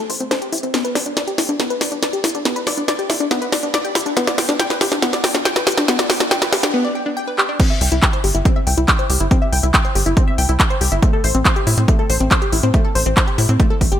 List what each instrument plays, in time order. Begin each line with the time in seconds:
0.10 analog synth bass A1, synth pluck C5, open hi-hat
0.20 analog synth bass G1, synth pluck C4, closed hi-hat
0.31 synth pluck C5, snare, closed hi-hat
0.42 synth pluck G4, closed hi-hat
0.52 analog synth bass A1, synth pluck E4, open hi-hat
0.58 closed hi-hat
0.63 analog synth bass A1, synth pluck C4, closed hi-hat
0.74 synth pluck B3, snare, closed hi-hat
0.85 synth pluck B4, closed hi-hat
0.95 analog synth bass E1, synth pluck D5, snare, open hi-hat
1.06 analog synth bass E1, synth pluck D4, closed hi-hat
1.17 synth pluck D5, snare, closed hi-hat
1.27 synth pluck G4, closed hi-hat
1.38 analog synth bass E2, synth pluck E4, snare, open hi-hat
1.49 analog synth bass E2, synth pluck D4, closed hi-hat
1.60 synth pluck B3, snare, closed hi-hat
1.70 synth pluck B4, closed hi-hat
1.81 analog synth bass E1, synth pluck D5, snare, open hi-hat
1.92 analog synth bass E1, synth pluck D4, closed hi-hat
2.02 synth pluck D5, snare, closed hi-hat
2.13 synth pluck G4, closed hi-hat
2.24 analog synth bass E1, synth pluck E4, snare, open hi-hat
2.29 closed hi-hat
2.35 analog synth bass E2, synth pluck D4, closed hi-hat
2.45 synth pluck B3, snare, closed hi-hat
2.56 synth pluck B4, closed hi-hat
2.67 analog synth bass E1, synth pluck D5, snare, open hi-hat
2.77 analog synth bass E1, synth pluck D4, closed hi-hat
2.88 synth pluck D5, snare, closed hi-hat
2.99 synth pluck G4, closed hi-hat
3.10 analog synth bass E2, synth pluck E4, snare, open hi-hat
3.20 analog synth bass E2, synth pluck D4, closed hi-hat
3.31 synth pluck B3, snare, closed hi-hat
3.42 synth pluck B4, closed hi-hat
3.52 analog synth bass E1, synth pluck D5, snare, open hi-hat
3.63 analog synth bass E1, synth pluck D4, closed hi-hat
3.74 synth pluck D5, snare, closed hi-hat
3.85 synth pluck G4, closed hi-hat
3.95 analog synth bass E1, synth pluck E4, snare, open hi-hat
4.01 closed hi-hat
4.06 analog synth bass E2, synth pluck D4, closed hi-hat
4.17 synth pluck B3, snare, closed hi-hat
4.27 synth pluck D5, snare, closed hi-hat
4.38 analog synth bass G1, synth pluck G5, snare, open hi-hat
4.49 analog synth bass G1, synth pluck D4, snare, closed hi-hat
4.60 synth pluck G5, snare, closed hi-hat
4.70 synth pluck B4, snare, closed hi-hat
4.81 analog synth bass G2, synth pluck G4, snare, open hi-hat
4.92 analog synth bass G2, synth pluck D4, snare, closed hi-hat
5.02 synth pluck B3, snare, closed hi-hat
5.13 synth pluck D5, snare, closed hi-hat
5.24 analog synth bass G1, synth pluck G5, snare, open hi-hat
5.35 analog synth bass G1, synth pluck D4, snare, closed hi-hat
5.45 synth pluck G5, snare, closed hi-hat
5.56 synth pluck B4, snare, closed hi-hat
5.67 analog synth bass G1, synth pluck G4, snare, open hi-hat
5.72 closed hi-hat
5.77 analog synth bass G2, synth pluck D4, snare, closed hi-hat
5.88 synth pluck B3, snare, closed hi-hat
5.99 synth pluck D5, snare, closed hi-hat
6.10 analog synth bass G1, synth pluck G5, snare, open hi-hat
6.20 analog synth bass G1, synth pluck D4, snare, closed hi-hat
6.31 synth pluck G5, snare, closed hi-hat
6.42 synth pluck B4, snare, closed hi-hat
6.52 analog synth bass G2, synth pluck G4, snare, open hi-hat
6.63 analog synth bass G2, synth pluck D4, snare, closed hi-hat
6.74 synth pluck B3
6.85 synth pluck D5
6.95 synth pluck G5
7.06 synth pluck D4
7.17 synth pluck G5
7.27 synth pluck B4
7.38 synth pluck G4, clap
7.49 synth pluck D4
7.60 synth pluck C4, kick, closed hi-hat, crash
7.70 synth pluck E5
7.81 analog synth bass C2, synth pluck G5, open hi-hat
7.92 analog synth bass C2, synth pluck E4, closed hi-hat
8.02 synth pluck G5, kick, clap, closed hi-hat
8.13 synth pluck C5, closed hi-hat
8.24 analog synth bass G1, synth pluck G4, open hi-hat
8.35 analog synth bass G1, synth pluck E4, closed hi-hat
8.45 synth pluck C4, kick, closed hi-hat
8.56 synth pluck E5
8.67 analog synth bass C2, synth pluck G5, open hi-hat
8.78 analog synth bass C2, synth pluck E4, closed hi-hat
8.88 synth pluck G5, kick, clap, closed hi-hat
8.99 synth pluck C5, closed hi-hat
9.10 analog synth bass C2, synth pluck G4, open hi-hat
9.20 analog synth bass G1, synth pluck E4, closed hi-hat
9.31 synth pluck C4, kick, closed hi-hat
9.42 synth pluck E5
9.52 analog synth bass C2, synth pluck G5, open hi-hat
9.63 analog synth bass C2, synth pluck E4, closed hi-hat
9.74 synth pluck G5, kick, clap, closed hi-hat
9.85 synth pluck C5, closed hi-hat
9.95 analog synth bass G1, synth pluck G4, open hi-hat
10.06 analog synth bass G1, synth pluck E4, closed hi-hat
10.17 synth pluck C4, kick, closed hi-hat
10.28 synth pluck E5
10.38 analog synth bass C2, synth pluck G5, open hi-hat
10.49 analog synth bass C2, synth pluck E4, closed hi-hat
10.60 synth pluck G5, kick, clap, closed hi-hat
10.70 synth pluck C5, closed hi-hat
10.81 analog synth bass C2, synth pluck G4, open hi-hat
10.92 analog synth bass G1, synth pluck E4, closed hi-hat
11.03 synth pluck A3, kick, closed hi-hat
11.13 synth pluck A4
11.24 analog synth bass A1, synth pluck C5, open hi-hat
11.35 analog synth bass A1, synth pluck C4, closed hi-hat
11.45 synth pluck C5, kick, clap, closed hi-hat
11.56 synth pluck G4, closed hi-hat
11.67 analog synth bass A2, synth pluck E4, open hi-hat
11.77 analog synth bass A2, synth pluck C4, closed hi-hat
11.88 synth pluck A3, kick, closed hi-hat
11.99 synth pluck A4
12.10 analog synth bass A1, synth pluck C5, open hi-hat
12.20 analog synth bass A1, synth pluck C4, closed hi-hat
12.31 synth pluck C5, kick, clap, closed hi-hat
12.42 synth pluck G4, closed hi-hat
12.52 analog synth bass A1, synth pluck E4, open hi-hat
12.63 analog synth bass A2, synth pluck C4, closed hi-hat
12.74 synth pluck A3, kick, closed hi-hat
12.85 synth pluck A4
12.95 analog synth bass A1, synth pluck C5, open hi-hat
13.06 analog synth bass A1, synth pluck C4, closed hi-hat
13.17 synth pluck C5, kick, clap, closed hi-hat
13.27 synth pluck G4, closed hi-hat
13.38 analog synth bass A2, synth pluck E4, open hi-hat
13.49 analog synth bass A2, synth pluck C4, closed hi-hat
13.60 synth pluck A3, kick, closed hi-hat
13.70 synth pluck A4
13.81 analog synth bass A1, synth pluck A3, kick, open hi-hat
13.92 analog synth bass G1, synth pluck G4, closed hi-hat